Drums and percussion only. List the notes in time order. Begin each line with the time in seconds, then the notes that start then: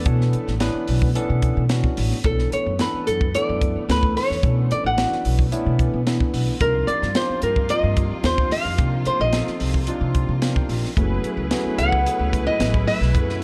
0.06 kick, closed hi-hat
0.21 snare
0.33 closed hi-hat
0.48 snare
0.60 snare, closed hi-hat
0.88 open hi-hat
1.02 kick
1.15 closed hi-hat
1.42 kick, closed hi-hat
1.69 snare, closed hi-hat
1.84 kick
1.97 open hi-hat
2.11 snare
2.24 kick, closed hi-hat
2.39 snare
2.52 closed hi-hat
2.79 snare, closed hi-hat
3.07 closed hi-hat
3.21 kick
3.35 closed hi-hat
3.61 kick, closed hi-hat
3.89 snare, closed hi-hat
4.03 kick
4.17 open hi-hat
4.31 snare
4.43 kick, closed hi-hat
4.71 closed hi-hat
4.98 snare, closed hi-hat
5.12 snare
5.25 open hi-hat
5.39 kick
5.52 closed hi-hat
5.79 kick, closed hi-hat
6.07 snare, closed hi-hat
6.20 kick
6.34 open hi-hat
6.60 kick, closed hi-hat
6.88 closed hi-hat
7.02 snare
7.15 snare, closed hi-hat
7.42 closed hi-hat
7.56 kick
7.69 closed hi-hat
7.97 kick, closed hi-hat
8.24 snare, closed hi-hat
8.38 kick
8.51 open hi-hat
8.78 kick, closed hi-hat
9.05 closed hi-hat
9.33 snare, closed hi-hat
9.47 snare
9.60 open hi-hat
9.74 kick
9.87 closed hi-hat
10.15 kick, closed hi-hat
10.42 snare, closed hi-hat
10.56 kick
10.69 open hi-hat
10.85 snare
10.97 kick, closed hi-hat
11.24 closed hi-hat
11.51 snare, closed hi-hat
11.78 closed hi-hat
11.92 kick
12.06 closed hi-hat
12.33 kick, closed hi-hat
12.60 snare, closed hi-hat
12.74 kick
12.88 open hi-hat
13.02 snare
13.15 kick, closed hi-hat
13.29 snare